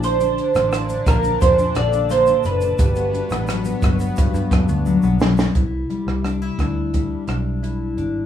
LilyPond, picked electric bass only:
\new Staff \with { instrumentName = "Picked electric bass" } { \clef bass \time 4/4 \key c \lydian \tempo 4 = 87 bes,,8. a,,8. bes,,8 f,8 bes,,4 fis,,8 | g,,8. a,,8. g,,8 r16 g,16 fis,16 d,8 b,,16 b,,8 | c,8 r16 c,8. d,4 b,,4 aes,,8 | }